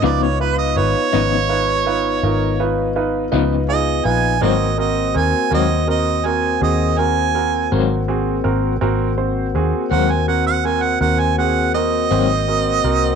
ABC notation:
X:1
M:12/8
L:1/16
Q:3/8=55
K:Abmix
V:1 name="Harmonica"
=d _d _c e d12 z4 e2 a2 | e2 e2 a2 e2 e2 a2 e2 a4 z6 | z6 g a g g a g g a g2 e8 |]
V:2 name="Upright piano"
[EF_c]2 [EFc]2 [EFc]2 [EFc]2 [EFc]2 [EFc]2 [EFB]2 [EFc]2 [EFc]2 [EFc]2 [EFA]2 [EFc]2 | [CGB]2 [CGB]2 [CGB]2 [CGB]2 [CGB]2 [CGB]2 [CGA]2 [CGB]2 [CGB]2 [CGB]2 [CGA]2 [CGB]2 | [CGB]2 [CGc]2 [CGA]2 [CGB]2 [CGB]2 [CGB]2 [CGB]2 [CGA]2 [CGB]2 [CGc]2 [CGB]2 [CGB]2 |]
V:3 name="Tonewheel organ"
[_CEF]24 | [B,CG]24 | [B,CG]24 |]
V:4 name="Clean electric guitar" clef=bass
[D,F,_CE]2 z4 [D,F,CE]2 z8 z2 [D,F,CE]2 z4 | [A,,G,B,C]2 z4 [A,,G,B,C]2 z8 z2 [A,,G,B,C]2 z4 | z6 [A,,G,B,C]2 z8 z2 [A,,G,B,C]2 z4 |]
V:5 name="Fingered electric bass" clef=bass
D,,4 A,,, z A,,,6 A,,,6 D,,4 B,,,2 | A,,,4 E,, z E,,6 E,,6 A,,,4 A,,,2 | A,,,4 E,, z E,,6 E,,6 A,,,4 C,,2 |]